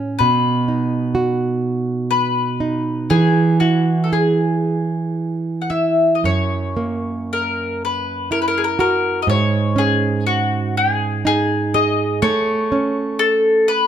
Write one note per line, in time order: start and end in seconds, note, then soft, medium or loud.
0.00 0.20 A2 medium
0.00 0.30 C#4 soft
0.00 1.14 F#4 soft
0.19 3.10 B2 medium
0.19 2.09 B4 medium
0.68 2.59 D#4 soft
1.15 3.20 F#4 medium
2.11 3.13 B4 medium
2.60 3.20 D#4 soft
3.10 6.27 E3 medium
3.10 3.60 G#4 medium
3.60 5.70 E4 soft
3.60 4.06 F#4 medium
4.04 4.11 A4 soft
4.12 6.36 G#4 medium
4.12 5.67 G#4 medium
5.62 5.70 F#5 soft
5.70 6.80 E4 soft
5.70 6.15 E5 medium
6.15 6.24 D#5 soft
6.24 9.27 F#2 medium
6.24 7.32 C#5 medium
6.77 9.38 A#3 soft
7.33 7.84 A#4 medium
7.85 8.31 B4 medium
8.31 9.38 E4 soft
8.31 8.41 A#4 medium
8.42 8.47 B4 soft
8.48 8.61 A#4 medium
8.58 8.63 G#4 soft
8.64 8.79 A#4 medium
8.79 9.38 F#4 medium
8.79 9.19 A#4 medium
9.22 9.29 D#5 medium
9.27 12.22 G#2 medium
9.27 9.80 C#5 medium
9.76 12.71 C#4 soft
9.76 10.26 G#4 medium
10.27 10.77 F#4 medium
10.77 11.25 G#4 medium
11.25 12.32 D#4 soft
11.25 11.77 G#4 medium
11.74 13.87 G#4 medium
11.74 12.22 D#5 medium
12.22 13.87 A3 medium
12.22 13.21 C#5 medium
12.72 13.87 C#4 soft
13.19 13.69 A4 medium
13.68 13.87 B4 medium